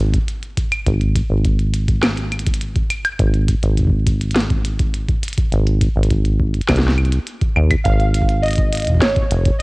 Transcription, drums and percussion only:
0.14 kick loud
0.14 closed hi-hat medium
0.28 closed hi-hat medium
0.43 closed hi-hat soft
0.57 kick loud
0.57 closed hi-hat medium
0.72 closed hi-hat medium
0.72 claves medium
0.86 kick loud
0.86 closed hi-hat medium
1.01 closed hi-hat soft
1.15 kick loud
1.15 closed hi-hat medium
1.45 kick loud
1.45 closed hi-hat medium
1.59 closed hi-hat soft
1.74 closed hi-hat medium
1.88 kick loud
1.88 closed hi-hat medium
2.03 snare loud
2.03 closed hi-hat medium
2.03 claves medium
2.17 closed hi-hat soft
2.32 closed hi-hat soft
2.32 claves soft
2.39 closed hi-hat medium
2.46 kick loud
2.46 closed hi-hat medium
2.54 closed hi-hat medium
2.61 closed hi-hat medium
2.76 kick loud
2.76 closed hi-hat soft
2.90 closed hi-hat loud
2.90 claves medium
3.05 closed hi-hat medium
3.05 claves medium
3.19 kick loud
3.19 closed hi-hat medium
3.34 closed hi-hat soft
3.48 kick loud
3.48 closed hi-hat medium
3.63 closed hi-hat medium
3.77 kick soft
3.77 closed hi-hat medium
3.80 kick medium
3.82 kick medium
3.85 kick medium
3.87 kick medium
3.90 kick medium
4.07 kick loud
4.07 closed hi-hat medium
4.21 closed hi-hat soft
4.31 closed hi-hat soft
4.36 snare loud
4.36 closed hi-hat medium
4.40 closed hi-hat soft
4.50 kick loud
4.50 closed hi-hat soft
4.65 closed hi-hat medium
4.79 kick loud
4.79 closed hi-hat medium
4.94 closed hi-hat medium
5.09 kick loud
5.09 closed hi-hat soft
5.23 closed hi-hat medium
5.28 closed hi-hat medium
5.33 closed hi-hat medium
5.38 kick loud
5.38 closed hi-hat medium
5.52 closed hi-hat medium
5.67 closed hi-hat soft
5.81 kick loud
5.81 closed hi-hat medium
6.03 closed hi-hat medium
6.10 kick loud
6.10 closed hi-hat soft
6.25 closed hi-hat soft
6.40 kick loud
6.54 closed hi-hat soft
6.61 closed hi-hat soft
6.69 kick loud
6.69 snare loud
6.69 closed hi-hat medium
6.69 claves medium
6.76 snare medium
6.76 closed hi-hat soft
6.83 closed hi-hat soft
6.88 snare medium
6.88 closed hi-hat soft
6.98 closed hi-hat soft
6.98 claves soft
7.05 closed hi-hat soft
7.12 closed hi-hat medium
7.27 closed hi-hat soft
7.41 kick loud
7.41 closed hi-hat soft
7.56 claves medium
7.71 kick loud
7.71 closed hi-hat medium
7.71 claves medium
7.85 kick loud
7.85 closed hi-hat soft
8.00 closed hi-hat soft
8.14 closed hi-hat medium
8.22 kick loud
8.29 closed hi-hat soft
8.43 closed hi-hat soft
8.46 closed hi-hat soft
8.48 closed hi-hat soft
8.51 closed hi-hat soft
8.53 closed hi-hat soft
8.56 closed hi-hat soft
8.58 kick loud
8.58 closed hi-hat soft
8.73 closed hi-hat medium
8.75 closed hi-hat medium
8.77 closed hi-hat medium
8.80 closed hi-hat soft
8.82 closed hi-hat soft
8.85 closed hi-hat soft
8.87 kick medium
8.87 closed hi-hat soft
8.90 kick medium
8.92 kick medium
8.95 kick medium
8.97 kick medium
8.99 kick loud
8.99 snare loud
8.99 closed hi-hat medium
9.16 kick loud
9.16 closed hi-hat soft
9.31 closed hi-hat medium
9.45 kick loud
9.45 closed hi-hat medium

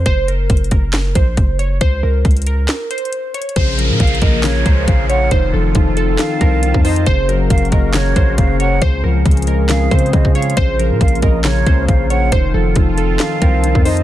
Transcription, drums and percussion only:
0.06 kick loud
0.06 closed hi-hat medium
0.28 closed hi-hat medium
0.50 kick medium
0.50 closed hi-hat medium
0.57 closed hi-hat medium
0.64 closed hi-hat soft
0.71 kick medium
0.71 closed hi-hat medium
0.93 snare loud
0.93 clap loud
0.93 closed hi-hat medium
1.15 kick loud
1.15 closed hi-hat medium
1.37 kick loud
1.37 closed hi-hat medium
1.59 closed hi-hat medium
1.81 kick loud
1.81 closed hi-hat medium
2.25 kick loud
2.25 closed hi-hat medium
2.31 closed hi-hat medium
2.37 closed hi-hat medium
2.42 closed hi-hat medium
2.47 closed hi-hat medium
2.68 snare loud
2.68 clap loud
2.68 closed hi-hat medium
2.91 closed hi-hat medium
2.98 closed hi-hat medium
3.05 closed hi-hat soft
3.13 closed hi-hat medium
3.34 closed hi-hat medium
3.42 closed hi-hat medium
3.49 closed hi-hat medium
3.56 kick loud
3.56 closed hi-hat medium
3.79 closed hi-hat medium
4.00 kick loud
4.00 closed hi-hat medium
4.07 closed hi-hat medium
4.15 closed hi-hat soft
4.22 kick medium
4.22 closed hi-hat medium
4.44 snare loud
4.44 clap loud
4.44 closed hi-hat medium
4.66 kick loud
4.66 closed hi-hat medium
4.88 kick loud
4.88 closed hi-hat medium
5.10 closed hi-hat medium
5.31 kick loud
5.31 closed hi-hat medium
5.75 kick loud
5.75 closed hi-hat medium
5.97 closed hi-hat medium
6.19 snare loud
6.19 clap loud
6.19 closed hi-hat medium
6.41 kick loud
6.41 closed hi-hat medium
6.63 closed hi-hat medium
6.74 kick medium
6.85 closed hi-hat soft
6.85 open hi-hat medium
6.96 closed hi-hat medium
7.06 kick loud
7.06 closed hi-hat medium
7.29 closed hi-hat medium
7.50 kick loud
7.50 closed hi-hat medium
7.58 closed hi-hat medium
7.65 closed hi-hat soft
7.72 kick medium
7.72 closed hi-hat medium
7.94 snare loud
7.94 clap loud
7.94 closed hi-hat medium
8.16 kick loud
8.16 closed hi-hat medium
8.38 kick loud
8.38 closed hi-hat medium
8.60 closed hi-hat medium
8.82 kick loud
8.82 closed hi-hat medium
9.26 kick medium
9.26 closed hi-hat medium
9.31 closed hi-hat medium
9.37 closed hi-hat medium
9.42 closed hi-hat medium
9.47 closed hi-hat medium
9.69 snare loud
9.69 clap loud
9.69 closed hi-hat medium
9.91 kick loud
9.91 closed hi-hat medium
9.99 closed hi-hat medium
10.06 closed hi-hat soft
10.13 kick loud
10.13 closed hi-hat medium
10.25 kick medium
10.35 closed hi-hat medium
10.42 closed hi-hat medium
10.50 closed hi-hat medium
10.57 kick loud
10.57 closed hi-hat medium
10.80 closed hi-hat medium
11.01 kick loud
11.01 closed hi-hat medium
11.08 closed hi-hat medium
11.15 closed hi-hat soft
11.22 kick medium
11.22 closed hi-hat medium
11.44 snare loud
11.44 clap loud
11.44 closed hi-hat medium
11.67 kick loud
11.67 closed hi-hat medium
11.88 kick loud
11.88 closed hi-hat medium
12.10 closed hi-hat medium
12.32 kick loud
12.32 closed hi-hat medium
12.76 kick loud
12.76 closed hi-hat medium
12.98 closed hi-hat medium
13.20 snare loud
13.20 clap loud
13.20 closed hi-hat medium
13.42 kick loud
13.42 closed hi-hat medium
13.64 closed hi-hat medium
13.75 kick medium
13.85 closed hi-hat soft
13.85 open hi-hat medium
13.97 closed hi-hat medium

